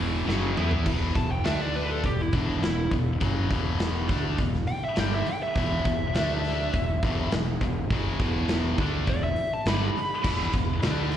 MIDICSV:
0, 0, Header, 1, 9, 480
1, 0, Start_track
1, 0, Tempo, 585938
1, 714, Time_signature, 4, 2, 24, 8
1, 9150, End_track
2, 0, Start_track
2, 0, Title_t, "Lead electric guitar"
2, 0, Program_c, 0, 29
2, 951, Note_on_c, 0, 81, 105
2, 1069, Note_off_c, 0, 81, 0
2, 1076, Note_on_c, 0, 79, 83
2, 1186, Note_on_c, 0, 76, 88
2, 1191, Note_off_c, 0, 79, 0
2, 1321, Note_off_c, 0, 76, 0
2, 1321, Note_on_c, 0, 74, 78
2, 1434, Note_off_c, 0, 74, 0
2, 1439, Note_on_c, 0, 71, 84
2, 1553, Note_off_c, 0, 71, 0
2, 1570, Note_on_c, 0, 69, 83
2, 1679, Note_off_c, 0, 69, 0
2, 1684, Note_on_c, 0, 67, 98
2, 1818, Note_off_c, 0, 67, 0
2, 1818, Note_on_c, 0, 64, 79
2, 1924, Note_off_c, 0, 64, 0
2, 1924, Note_on_c, 0, 62, 97
2, 2146, Note_off_c, 0, 62, 0
2, 2150, Note_on_c, 0, 64, 100
2, 2385, Note_off_c, 0, 64, 0
2, 3830, Note_on_c, 0, 79, 107
2, 3949, Note_off_c, 0, 79, 0
2, 3969, Note_on_c, 0, 76, 84
2, 4090, Note_off_c, 0, 76, 0
2, 4090, Note_on_c, 0, 79, 78
2, 4199, Note_off_c, 0, 79, 0
2, 4221, Note_on_c, 0, 76, 72
2, 4325, Note_off_c, 0, 76, 0
2, 4337, Note_on_c, 0, 79, 93
2, 4443, Note_off_c, 0, 79, 0
2, 4448, Note_on_c, 0, 76, 75
2, 4558, Note_off_c, 0, 76, 0
2, 4587, Note_on_c, 0, 76, 112
2, 5978, Note_off_c, 0, 76, 0
2, 7447, Note_on_c, 0, 74, 114
2, 7557, Note_off_c, 0, 74, 0
2, 7566, Note_on_c, 0, 76, 89
2, 7793, Note_off_c, 0, 76, 0
2, 7810, Note_on_c, 0, 81, 86
2, 7919, Note_off_c, 0, 81, 0
2, 7919, Note_on_c, 0, 83, 91
2, 9150, Note_off_c, 0, 83, 0
2, 9150, End_track
3, 0, Start_track
3, 0, Title_t, "Distorted electric guitar"
3, 0, Program_c, 1, 30
3, 0, Note_on_c, 1, 40, 107
3, 0, Note_on_c, 1, 47, 106
3, 0, Note_on_c, 1, 52, 109
3, 221, Note_off_c, 1, 40, 0
3, 224, Note_off_c, 1, 47, 0
3, 224, Note_off_c, 1, 52, 0
3, 224, Note_on_c, 1, 42, 96
3, 227, Note_on_c, 1, 54, 98
3, 232, Note_on_c, 1, 49, 95
3, 459, Note_off_c, 1, 49, 0
3, 462, Note_off_c, 1, 42, 0
3, 463, Note_off_c, 1, 54, 0
3, 463, Note_on_c, 1, 52, 81
3, 471, Note_on_c, 1, 59, 81
3, 471, Note_on_c, 1, 64, 78
3, 701, Note_off_c, 1, 52, 0
3, 705, Note_off_c, 1, 59, 0
3, 705, Note_off_c, 1, 64, 0
3, 710, Note_on_c, 1, 40, 80
3, 715, Note_on_c, 1, 52, 96
3, 716, Note_on_c, 1, 47, 87
3, 945, Note_off_c, 1, 40, 0
3, 947, Note_off_c, 1, 52, 0
3, 948, Note_off_c, 1, 47, 0
3, 955, Note_on_c, 1, 40, 55
3, 960, Note_on_c, 1, 47, 65
3, 1146, Note_off_c, 1, 40, 0
3, 1149, Note_off_c, 1, 47, 0
3, 1180, Note_on_c, 1, 50, 83
3, 1180, Note_on_c, 1, 57, 80
3, 1185, Note_on_c, 1, 62, 111
3, 1660, Note_off_c, 1, 50, 0
3, 1660, Note_off_c, 1, 57, 0
3, 1662, Note_off_c, 1, 62, 0
3, 1679, Note_on_c, 1, 40, 71
3, 1684, Note_on_c, 1, 47, 73
3, 1868, Note_off_c, 1, 40, 0
3, 1871, Note_off_c, 1, 47, 0
3, 1915, Note_on_c, 1, 40, 84
3, 1915, Note_on_c, 1, 47, 75
3, 1915, Note_on_c, 1, 52, 82
3, 2144, Note_off_c, 1, 40, 0
3, 2147, Note_off_c, 1, 47, 0
3, 2147, Note_off_c, 1, 52, 0
3, 2154, Note_on_c, 1, 40, 64
3, 2158, Note_on_c, 1, 47, 67
3, 2346, Note_off_c, 1, 40, 0
3, 2348, Note_off_c, 1, 47, 0
3, 2401, Note_on_c, 1, 40, 53
3, 2402, Note_on_c, 1, 47, 71
3, 2590, Note_off_c, 1, 40, 0
3, 2590, Note_off_c, 1, 47, 0
3, 2625, Note_on_c, 1, 42, 86
3, 2628, Note_on_c, 1, 49, 89
3, 2635, Note_on_c, 1, 54, 94
3, 2862, Note_off_c, 1, 42, 0
3, 2864, Note_off_c, 1, 49, 0
3, 2867, Note_off_c, 1, 54, 0
3, 2873, Note_on_c, 1, 47, 82
3, 2874, Note_on_c, 1, 40, 79
3, 2880, Note_on_c, 1, 52, 94
3, 3346, Note_off_c, 1, 47, 0
3, 3347, Note_off_c, 1, 40, 0
3, 3350, Note_off_c, 1, 52, 0
3, 3361, Note_on_c, 1, 50, 89
3, 3364, Note_on_c, 1, 57, 100
3, 3367, Note_on_c, 1, 62, 107
3, 3591, Note_off_c, 1, 50, 0
3, 3592, Note_off_c, 1, 57, 0
3, 3594, Note_off_c, 1, 62, 0
3, 3616, Note_on_c, 1, 40, 70
3, 3617, Note_on_c, 1, 47, 75
3, 3797, Note_off_c, 1, 40, 0
3, 3798, Note_off_c, 1, 47, 0
3, 4080, Note_on_c, 1, 43, 88
3, 4088, Note_on_c, 1, 50, 96
3, 4093, Note_on_c, 1, 55, 92
3, 4310, Note_off_c, 1, 43, 0
3, 4314, Note_off_c, 1, 50, 0
3, 4317, Note_off_c, 1, 55, 0
3, 4567, Note_on_c, 1, 40, 90
3, 4569, Note_on_c, 1, 47, 100
3, 4570, Note_on_c, 1, 52, 108
3, 4794, Note_off_c, 1, 40, 0
3, 4795, Note_off_c, 1, 47, 0
3, 4795, Note_off_c, 1, 52, 0
3, 4811, Note_on_c, 1, 40, 61
3, 4814, Note_on_c, 1, 47, 66
3, 4995, Note_off_c, 1, 40, 0
3, 4997, Note_off_c, 1, 47, 0
3, 5055, Note_on_c, 1, 62, 102
3, 5057, Note_on_c, 1, 50, 94
3, 5059, Note_on_c, 1, 57, 92
3, 5518, Note_off_c, 1, 62, 0
3, 5519, Note_off_c, 1, 50, 0
3, 5520, Note_off_c, 1, 57, 0
3, 5533, Note_on_c, 1, 40, 69
3, 5535, Note_on_c, 1, 47, 78
3, 5716, Note_off_c, 1, 40, 0
3, 5717, Note_off_c, 1, 47, 0
3, 5775, Note_on_c, 1, 40, 86
3, 5778, Note_on_c, 1, 47, 78
3, 5784, Note_on_c, 1, 52, 80
3, 5997, Note_off_c, 1, 40, 0
3, 5999, Note_off_c, 1, 47, 0
3, 6002, Note_off_c, 1, 52, 0
3, 6015, Note_on_c, 1, 40, 60
3, 6020, Note_on_c, 1, 47, 69
3, 6197, Note_off_c, 1, 40, 0
3, 6199, Note_off_c, 1, 47, 0
3, 6248, Note_on_c, 1, 40, 50
3, 6253, Note_on_c, 1, 47, 63
3, 6433, Note_off_c, 1, 40, 0
3, 6436, Note_off_c, 1, 47, 0
3, 6491, Note_on_c, 1, 49, 91
3, 6492, Note_on_c, 1, 42, 88
3, 6496, Note_on_c, 1, 54, 98
3, 6715, Note_off_c, 1, 49, 0
3, 6716, Note_off_c, 1, 42, 0
3, 6718, Note_off_c, 1, 54, 0
3, 6731, Note_on_c, 1, 47, 81
3, 6732, Note_on_c, 1, 40, 78
3, 6741, Note_on_c, 1, 52, 96
3, 7195, Note_off_c, 1, 47, 0
3, 7196, Note_off_c, 1, 40, 0
3, 7200, Note_off_c, 1, 52, 0
3, 7205, Note_on_c, 1, 50, 88
3, 7210, Note_on_c, 1, 57, 94
3, 7217, Note_on_c, 1, 62, 103
3, 7432, Note_off_c, 1, 50, 0
3, 7435, Note_off_c, 1, 57, 0
3, 7438, Note_off_c, 1, 62, 0
3, 7465, Note_on_c, 1, 47, 83
3, 7466, Note_on_c, 1, 40, 67
3, 7641, Note_off_c, 1, 47, 0
3, 7642, Note_off_c, 1, 40, 0
3, 7939, Note_on_c, 1, 43, 85
3, 7944, Note_on_c, 1, 55, 91
3, 7947, Note_on_c, 1, 50, 90
3, 8159, Note_off_c, 1, 43, 0
3, 8161, Note_off_c, 1, 55, 0
3, 8163, Note_off_c, 1, 50, 0
3, 8386, Note_on_c, 1, 40, 84
3, 8396, Note_on_c, 1, 52, 100
3, 8397, Note_on_c, 1, 47, 92
3, 8621, Note_off_c, 1, 47, 0
3, 8622, Note_off_c, 1, 40, 0
3, 8627, Note_off_c, 1, 52, 0
3, 8631, Note_on_c, 1, 47, 63
3, 8636, Note_on_c, 1, 40, 53
3, 8824, Note_off_c, 1, 47, 0
3, 8826, Note_off_c, 1, 40, 0
3, 8875, Note_on_c, 1, 50, 91
3, 8876, Note_on_c, 1, 57, 94
3, 8884, Note_on_c, 1, 62, 100
3, 9150, Note_off_c, 1, 50, 0
3, 9150, Note_off_c, 1, 57, 0
3, 9150, Note_off_c, 1, 62, 0
3, 9150, End_track
4, 0, Start_track
4, 0, Title_t, "Overdriven electric guitar"
4, 0, Program_c, 2, 29
4, 3583, Note_on_c, 2, 40, 56
4, 3781, Note_off_c, 2, 40, 0
4, 9150, End_track
5, 0, Start_track
5, 0, Title_t, "Fingered electric bass"
5, 0, Program_c, 3, 33
5, 0, Note_on_c, 3, 28, 92
5, 198, Note_off_c, 3, 28, 0
5, 224, Note_on_c, 3, 30, 99
5, 452, Note_off_c, 3, 30, 0
5, 472, Note_on_c, 3, 40, 96
5, 696, Note_off_c, 3, 40, 0
5, 706, Note_on_c, 3, 28, 81
5, 932, Note_off_c, 3, 28, 0
5, 945, Note_on_c, 3, 28, 61
5, 1172, Note_off_c, 3, 28, 0
5, 1202, Note_on_c, 3, 38, 89
5, 1645, Note_off_c, 3, 38, 0
5, 1673, Note_on_c, 3, 28, 80
5, 1897, Note_off_c, 3, 28, 0
5, 1908, Note_on_c, 3, 28, 103
5, 2134, Note_off_c, 3, 28, 0
5, 2145, Note_on_c, 3, 28, 78
5, 2372, Note_off_c, 3, 28, 0
5, 2391, Note_on_c, 3, 28, 74
5, 2616, Note_off_c, 3, 28, 0
5, 2633, Note_on_c, 3, 30, 88
5, 2857, Note_off_c, 3, 30, 0
5, 2876, Note_on_c, 3, 28, 81
5, 3323, Note_off_c, 3, 28, 0
5, 3354, Note_on_c, 3, 38, 95
5, 3578, Note_off_c, 3, 38, 0
5, 3594, Note_on_c, 3, 28, 82
5, 3818, Note_off_c, 3, 28, 0
5, 4078, Note_on_c, 3, 31, 95
5, 4300, Note_off_c, 3, 31, 0
5, 4555, Note_on_c, 3, 28, 80
5, 4778, Note_off_c, 3, 28, 0
5, 4790, Note_on_c, 3, 28, 73
5, 5016, Note_off_c, 3, 28, 0
5, 5028, Note_on_c, 3, 38, 101
5, 5478, Note_off_c, 3, 38, 0
5, 5520, Note_on_c, 3, 28, 86
5, 5741, Note_off_c, 3, 28, 0
5, 5762, Note_on_c, 3, 28, 94
5, 5982, Note_off_c, 3, 28, 0
5, 6001, Note_on_c, 3, 28, 83
5, 6221, Note_off_c, 3, 28, 0
5, 6233, Note_on_c, 3, 28, 87
5, 6457, Note_off_c, 3, 28, 0
5, 6474, Note_on_c, 3, 30, 95
5, 6697, Note_off_c, 3, 30, 0
5, 6712, Note_on_c, 3, 28, 77
5, 7160, Note_off_c, 3, 28, 0
5, 7191, Note_on_c, 3, 38, 92
5, 7415, Note_off_c, 3, 38, 0
5, 7431, Note_on_c, 3, 28, 72
5, 7655, Note_off_c, 3, 28, 0
5, 7909, Note_on_c, 3, 31, 91
5, 8134, Note_off_c, 3, 31, 0
5, 8389, Note_on_c, 3, 28, 84
5, 8614, Note_off_c, 3, 28, 0
5, 8635, Note_on_c, 3, 28, 63
5, 8857, Note_off_c, 3, 28, 0
5, 8870, Note_on_c, 3, 38, 95
5, 9150, Note_off_c, 3, 38, 0
5, 9150, End_track
6, 0, Start_track
6, 0, Title_t, "Muted distorted electric guitar strokes"
6, 4334, Note_on_c, 9, 29, 52
6, 4416, Note_off_c, 9, 29, 0
6, 8164, Note_on_c, 9, 29, 52
6, 8246, Note_off_c, 9, 29, 0
6, 9150, End_track
7, 0, Start_track
7, 0, Title_t, "Muted fingered electric bass strokes"
7, 4315, Note_on_c, 9, 29, 45
7, 4397, Note_off_c, 9, 29, 0
7, 8144, Note_on_c, 9, 29, 42
7, 8226, Note_off_c, 9, 29, 0
7, 9150, End_track
8, 0, Start_track
8, 0, Title_t, "Muted overdriven electric guitar strokes"
8, 4307, Note_on_c, 9, 29, 51
8, 4389, Note_off_c, 9, 29, 0
8, 8156, Note_on_c, 9, 29, 54
8, 8238, Note_off_c, 9, 29, 0
8, 9150, End_track
9, 0, Start_track
9, 0, Title_t, "Drums"
9, 234, Note_on_c, 9, 38, 68
9, 316, Note_off_c, 9, 38, 0
9, 469, Note_on_c, 9, 45, 96
9, 551, Note_off_c, 9, 45, 0
9, 582, Note_on_c, 9, 43, 92
9, 663, Note_off_c, 9, 43, 0
9, 702, Note_on_c, 9, 49, 102
9, 703, Note_on_c, 9, 36, 102
9, 784, Note_off_c, 9, 49, 0
9, 785, Note_off_c, 9, 36, 0
9, 944, Note_on_c, 9, 36, 98
9, 949, Note_on_c, 9, 46, 61
9, 1026, Note_off_c, 9, 36, 0
9, 1031, Note_off_c, 9, 46, 0
9, 1184, Note_on_c, 9, 46, 82
9, 1192, Note_on_c, 9, 38, 123
9, 1266, Note_off_c, 9, 46, 0
9, 1274, Note_off_c, 9, 38, 0
9, 1426, Note_on_c, 9, 46, 51
9, 1508, Note_off_c, 9, 46, 0
9, 1669, Note_on_c, 9, 36, 87
9, 1676, Note_on_c, 9, 46, 68
9, 1751, Note_off_c, 9, 36, 0
9, 1758, Note_off_c, 9, 46, 0
9, 1909, Note_on_c, 9, 36, 98
9, 1920, Note_on_c, 9, 46, 61
9, 1991, Note_off_c, 9, 36, 0
9, 2002, Note_off_c, 9, 46, 0
9, 2154, Note_on_c, 9, 46, 80
9, 2161, Note_on_c, 9, 38, 118
9, 2236, Note_off_c, 9, 46, 0
9, 2243, Note_off_c, 9, 38, 0
9, 2387, Note_on_c, 9, 36, 86
9, 2387, Note_on_c, 9, 46, 60
9, 2469, Note_off_c, 9, 36, 0
9, 2469, Note_off_c, 9, 46, 0
9, 2631, Note_on_c, 9, 36, 104
9, 2634, Note_on_c, 9, 46, 67
9, 2713, Note_off_c, 9, 36, 0
9, 2716, Note_off_c, 9, 46, 0
9, 2873, Note_on_c, 9, 36, 94
9, 2880, Note_on_c, 9, 46, 58
9, 2955, Note_off_c, 9, 36, 0
9, 2962, Note_off_c, 9, 46, 0
9, 3109, Note_on_c, 9, 46, 78
9, 3116, Note_on_c, 9, 38, 124
9, 3191, Note_off_c, 9, 46, 0
9, 3198, Note_off_c, 9, 38, 0
9, 3353, Note_on_c, 9, 36, 102
9, 3360, Note_on_c, 9, 46, 62
9, 3367, Note_on_c, 9, 38, 28
9, 3435, Note_off_c, 9, 36, 0
9, 3442, Note_off_c, 9, 46, 0
9, 3449, Note_off_c, 9, 38, 0
9, 3591, Note_on_c, 9, 46, 66
9, 3593, Note_on_c, 9, 36, 92
9, 3673, Note_off_c, 9, 46, 0
9, 3675, Note_off_c, 9, 36, 0
9, 3718, Note_on_c, 9, 38, 30
9, 3800, Note_off_c, 9, 38, 0
9, 3827, Note_on_c, 9, 46, 57
9, 3909, Note_off_c, 9, 46, 0
9, 4064, Note_on_c, 9, 46, 92
9, 4071, Note_on_c, 9, 38, 116
9, 4146, Note_off_c, 9, 46, 0
9, 4153, Note_off_c, 9, 38, 0
9, 4313, Note_on_c, 9, 46, 66
9, 4395, Note_off_c, 9, 46, 0
9, 4550, Note_on_c, 9, 46, 82
9, 4553, Note_on_c, 9, 36, 96
9, 4632, Note_off_c, 9, 46, 0
9, 4635, Note_off_c, 9, 36, 0
9, 4796, Note_on_c, 9, 36, 94
9, 4797, Note_on_c, 9, 46, 61
9, 4878, Note_off_c, 9, 36, 0
9, 4879, Note_off_c, 9, 46, 0
9, 5037, Note_on_c, 9, 46, 85
9, 5044, Note_on_c, 9, 38, 121
9, 5119, Note_off_c, 9, 46, 0
9, 5126, Note_off_c, 9, 38, 0
9, 5282, Note_on_c, 9, 46, 57
9, 5289, Note_on_c, 9, 38, 32
9, 5363, Note_off_c, 9, 46, 0
9, 5371, Note_off_c, 9, 38, 0
9, 5519, Note_on_c, 9, 36, 81
9, 5521, Note_on_c, 9, 46, 78
9, 5601, Note_off_c, 9, 36, 0
9, 5603, Note_off_c, 9, 46, 0
9, 5758, Note_on_c, 9, 36, 102
9, 5759, Note_on_c, 9, 46, 61
9, 5840, Note_off_c, 9, 36, 0
9, 5841, Note_off_c, 9, 46, 0
9, 5994, Note_on_c, 9, 46, 76
9, 6001, Note_on_c, 9, 38, 124
9, 6076, Note_off_c, 9, 46, 0
9, 6083, Note_off_c, 9, 38, 0
9, 6236, Note_on_c, 9, 36, 88
9, 6239, Note_on_c, 9, 46, 51
9, 6318, Note_off_c, 9, 36, 0
9, 6321, Note_off_c, 9, 46, 0
9, 6477, Note_on_c, 9, 36, 104
9, 6480, Note_on_c, 9, 46, 70
9, 6559, Note_off_c, 9, 36, 0
9, 6562, Note_off_c, 9, 46, 0
9, 6715, Note_on_c, 9, 36, 107
9, 6719, Note_on_c, 9, 46, 57
9, 6797, Note_off_c, 9, 36, 0
9, 6801, Note_off_c, 9, 46, 0
9, 6949, Note_on_c, 9, 46, 83
9, 6957, Note_on_c, 9, 38, 121
9, 7031, Note_off_c, 9, 46, 0
9, 7039, Note_off_c, 9, 38, 0
9, 7193, Note_on_c, 9, 36, 102
9, 7193, Note_on_c, 9, 46, 50
9, 7275, Note_off_c, 9, 36, 0
9, 7275, Note_off_c, 9, 46, 0
9, 7430, Note_on_c, 9, 46, 70
9, 7432, Note_on_c, 9, 36, 90
9, 7512, Note_off_c, 9, 46, 0
9, 7514, Note_off_c, 9, 36, 0
9, 7667, Note_on_c, 9, 46, 59
9, 7749, Note_off_c, 9, 46, 0
9, 7910, Note_on_c, 9, 46, 85
9, 7917, Note_on_c, 9, 38, 120
9, 7992, Note_off_c, 9, 46, 0
9, 7999, Note_off_c, 9, 38, 0
9, 8156, Note_on_c, 9, 46, 63
9, 8238, Note_off_c, 9, 46, 0
9, 8388, Note_on_c, 9, 57, 100
9, 8391, Note_on_c, 9, 36, 106
9, 8470, Note_off_c, 9, 57, 0
9, 8473, Note_off_c, 9, 36, 0
9, 8625, Note_on_c, 9, 46, 64
9, 8631, Note_on_c, 9, 36, 91
9, 8707, Note_off_c, 9, 46, 0
9, 8712, Note_off_c, 9, 36, 0
9, 8868, Note_on_c, 9, 46, 85
9, 8875, Note_on_c, 9, 38, 120
9, 8950, Note_off_c, 9, 46, 0
9, 8957, Note_off_c, 9, 38, 0
9, 9108, Note_on_c, 9, 46, 55
9, 9115, Note_on_c, 9, 38, 35
9, 9150, Note_off_c, 9, 38, 0
9, 9150, Note_off_c, 9, 46, 0
9, 9150, End_track
0, 0, End_of_file